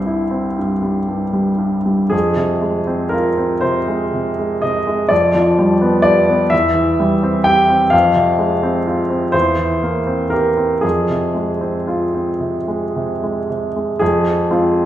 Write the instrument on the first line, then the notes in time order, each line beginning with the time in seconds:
grand piano
Already playing: C2 G2 G3 C4 C5
0.06 E4
0.31 C4
0.58 G2
0.82 G3
1.08 G2
1.33 G3
1.58 G2
1.86 G3
2.10 F2 G#4
2.36 C3
2.62 G#3
2.87 C4
3.09 F4 A#4
3.38 C4
3.61 C3 C5
3.88 G#3
4.13 C3
4.39 G#3
4.62 C3 D#5
4.87 G#3
5.09 F2 D5
5.35 F3
5.59 G3
5.81 B3
6.02 G4 D5
6.29 B3
6.50 E2 E5
6.74 E3
7.00 G3
7.23 C4
7.44 G4 G5
7.70 C4
7.90 F2 F5
8.15 C3
8.38 G#3
8.63 C4
8.87 F4
9.10 C4
9.32 E2 C5
9.59 E3
9.83 A#3
10.07 C4
10.30 G4 A#4
10.57 C4
10.81 F2 G#4
11.10 C3
11.35 G#3
11.61 C4
11.87 F4
12.14 C4
12.40 C3
12.68 G#3
12.96 C3
13.23 G#3
13.50 C3
13.76 G#3
13.99 F2 G#4
14.50 G#3 C4 F4